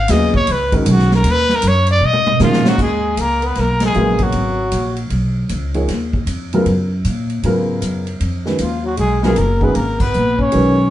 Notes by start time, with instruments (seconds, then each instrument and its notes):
Already playing: trumpet F5
0.08 upright bass D#2, grand piano C#3 F#3 B3 F4 G#4, trumpet D#5, snare, hi-hat pedal, ride
0.34 trumpet C#5, kick
0.47 upright bass C#2, ride
0.52 trumpet B4
0.72 grand piano D#3 G#3 C#4 F#4 A#4, kick, ride
0.76 trumpet D#4
0.86 upright bass B1, hi-hat pedal, ride
0.90 trumpet F#4
0.99 snare
1.11 snare
1.15 trumpet A#4
1.24 upright bass D#2, ride
1.31 trumpet B4
1.49 snare
1.55 trumpet A#4
1.62 upright bass F#2, hi-hat pedal, ride
1.68 trumpet C#5
1.86 ride
1.91 trumpet D5
2.01 upright bass B2
2.05 trumpet D#5
2.13 mid tom
2.26 mid tom
2.39 upright bass A#2, grand piano D#3 G#3 C#4 F#4 A#4, trombone F3, trumpet F4, snare, hi-hat pedal
2.53 snare
2.64 trombone F#3, snare
2.69 trumpet F#4
2.78 upright bass D#2, trombone G#3, trumpet G#4, kick, crash
3.17 upright bass C#2, trombone A#3, trumpet A#4, hi-hat pedal, ride
3.42 trombone B3, ride
3.46 trumpet B4
3.55 upright bass B1, trombone A#3, snare, ride
3.60 trumpet A#4
3.80 trombone G#3, snare, ride
3.86 trumpet G#4
3.94 upright bass A#1, grand piano C#3 F#3 B3 A#4 F5, hi-hat pedal
4.19 trombone F#3, kick, ride
4.23 trumpet F#4
4.32 upright bass G#1, ride
4.72 upright bass A#1, hi-hat pedal, ride
4.96 ride
5.10 upright bass B1, ride
5.49 upright bass C#2, hi-hat pedal, ride
5.74 grand piano F3 A#3 D#4 G#4 C#5, ride
5.88 upright bass D#2, snare, ride
6.13 kick
6.26 upright bass F2, hi-hat pedal, ride
6.53 grand piano C#3 F#3 B3 F4 A#4, ride
6.65 upright bass F#2, ride
7.05 upright bass A#2, hi-hat pedal, ride
7.30 ride
7.43 upright bass G#2, grand piano C#3 F#3 B3 F4 A#4, ride
7.81 upright bass F#2, hi-hat pedal, ride
8.07 ride
8.20 upright bass F2, ride
8.46 grand piano D#3 G#3 C#4 F#4 B4, snare
8.58 upright bass D#2, trombone F3, trumpet F4, hi-hat pedal, ride
8.82 trombone F#3
8.86 trumpet F#4
8.96 upright bass B1, trombone G#3, trumpet G#4, ride
9.22 grand piano C#3 F#3 B3 F4 A#4, trombone G#3, trumpet G#4, snare
9.35 upright bass F#1, trombone A#3, trumpet A#4, hi-hat pedal, ride
9.60 grand piano D#3 G#3 C#4 F#4 G#4, trombone B3, trumpet B4, kick
9.74 upright bass G#1, trombone A#3, trumpet A#4, ride
9.98 trombone B3, trumpet B4, kick, crash
10.13 upright bass A#1, hi-hat pedal
10.38 trombone C#4, trumpet C#5, kick
10.52 upright bass B1, grand piano D#3 G#3 C#4 F#4 B4, ride